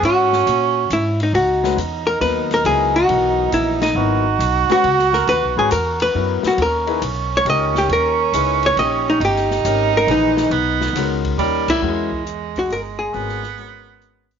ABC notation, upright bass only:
X:1
M:3/4
L:1/8
Q:"Swing" 1/4=137
K:G#m
V:1 name="Upright bass" clef=bass
G,,2 A,,2 G,,2 | C,,2 E,,2 D,,2 | C,,2 B,,,2 A,,,2 | G,,,2 B,,, z C,,2 |
(3D,, B,,, G,,, E,,2 F,, z | D,,2 B,,,2 C,,2 | D,,2 C,,2 A,,,2 | =G,,,2 ^G,,,2 A,,,2 |
B,,,2 C,,2 D,,2 | E,,4 =G,,,2 | G,,,6 |]